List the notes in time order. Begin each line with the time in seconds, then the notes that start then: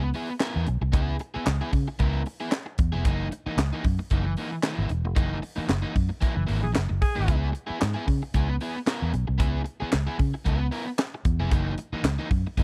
Already playing: C#2
0.04 muted overdriven electric guitar stroke
0.14 B3 E4 G#4, open hi-hat
0.30 muted overdriven electric guitar stroke
0.40 B3 E4 A#4, snare, clap, closed hi-hat
0.56 E2
0.67 B1, muted overdriven electric guitar stroke, closed hi-hat
0.81 C2, muted overdriven electric guitar stroke
0.92 C#2 B3 E4 G#4, kick, closed hi-hat
1.19 muted overdriven electric guitar stroke, closed hi-hat
1.34 B3 E4 G#4, muted fingered electric bass stroke
1.46 C#2, muted overdriven electric guitar stroke, snare, clap, closed hi-hat
1.61 B3 E4 G#4
1.72 C#3, muted overdriven electric guitar stroke, kick, open hi-hat
1.88 muted overdriven electric guitar stroke
1.99 C#2 B3 E4 A#4, kick, closed hi-hat
2.26 muted overdriven electric guitar stroke, open hi-hat
2.40 B3 E4 G#4
2.51 muted overdriven electric guitar stroke, snare, clap, closed hi-hat
2.66 muted overdriven electric guitar stroke
2.78 E2, kick, closed hi-hat
2.92 F1 B3 E4 G#4
3.05 F#1 E3 A#3 D#4, kick, closed hi-hat
3.32 muted overdriven electric guitar stroke, closed hi-hat
3.46 E3 A#3 D#4, muted fingered electric bass stroke
3.58 C#2, muted overdriven electric guitar stroke, snare, clap, closed hi-hat
3.73 E3 A#3 D#4
3.84 F#2, muted overdriven electric guitar stroke, kick, open hi-hat
3.99 muted overdriven electric guitar stroke
4.10 F#1 E3 A#3 D#4, kick, closed hi-hat
4.26 muted overdriven electric guitar stroke
4.37 E3 A#3 D#4, open hi-hat
4.52 muted overdriven electric guitar stroke
4.63 E3 A#3 E4, snare, clap, closed hi-hat
4.78 G#1
4.89 E1, muted overdriven electric guitar stroke, closed hi-hat
5.05 F1, muted overdriven electric guitar stroke
5.15 F#1 E3 A#3 D#4, kick, closed hi-hat
5.42 muted overdriven electric guitar stroke, open hi-hat
5.56 E3 A#3 D#4, muted fingered electric bass stroke
5.68 F#1, muted overdriven electric guitar stroke, snare, clap, closed hi-hat
5.82 E3 A#3 D#4
5.95 F#2, muted overdriven electric guitar stroke, kick, open hi-hat
6.09 muted overdriven electric guitar stroke
6.21 E3 A#3 E4, kick, closed hi-hat
6.36 F#1, muted overdriven electric guitar stroke
6.47 G#1 E3 A#3 E4, open hi-hat
6.62 A#1 G#4, muted overdriven electric guitar stroke
6.73 F#1, muted overdriven electric guitar stroke, snare, clap, closed hi-hat
6.89 F#1, muted overdriven electric guitar stroke
7.01 G#4, kick, open hi-hat
7.15 G#1 E3 A#3 D#4
7.26 C#2 B3 E4 G#4, kick, closed hi-hat
7.52 muted overdriven electric guitar stroke, closed hi-hat
7.67 B3 E4 G#4, muted fingered electric bass stroke
7.80 G#2, muted overdriven electric guitar stroke, snare, clap, closed hi-hat
7.94 B3 E4 G#4
8.06 C#3, muted overdriven electric guitar stroke, kick, open hi-hat
8.23 muted overdriven electric guitar stroke
8.34 C#2 B3 E4 G#4, kick, closed hi-hat
8.50 muted overdriven electric guitar stroke
8.61 B3 E4 G#4, open hi-hat
8.77 muted overdriven electric guitar stroke
8.86 B3 E4 A#4, snare, clap, closed hi-hat
9.02 E2
9.14 B1, muted overdriven electric guitar stroke, closed hi-hat
9.27 C2, muted overdriven electric guitar stroke
9.38 C#2 B3 E4 G#4, kick, closed hi-hat
9.64 muted overdriven electric guitar stroke, closed hi-hat
9.80 B3 E4 G#4, muted fingered electric bass stroke
9.91 C#2, muted overdriven electric guitar stroke, snare, clap, closed hi-hat
10.07 B3 E4 G#4
10.18 C#3, muted overdriven electric guitar stroke, kick, open hi-hat
10.34 muted overdriven electric guitar stroke
10.45 C#2 B3 E4 A#4, kick, closed hi-hat
10.59 muted overdriven electric guitar stroke
10.71 B3 E4 A#4, open hi-hat
10.86 muted overdriven electric guitar stroke
10.98 muted overdriven electric guitar stroke, snare, clap, closed hi-hat
11.14 muted overdriven electric guitar stroke
11.25 E2, kick, closed hi-hat
11.40 F1 B3 E4 G#4
11.51 F#1 E3 A#3 D#4, kick, closed hi-hat
11.78 muted overdriven electric guitar stroke, closed hi-hat
11.93 E3 A#3 D#4, muted fingered electric bass stroke
12.04 C#2, muted overdriven electric guitar stroke, snare, clap, closed hi-hat
12.19 E3 A#3 D#4
12.31 F#2, muted overdriven electric guitar stroke, kick, open hi-hat
12.47 muted overdriven electric guitar stroke
12.57 F#1 E3 A#3 D#4, kick, closed hi-hat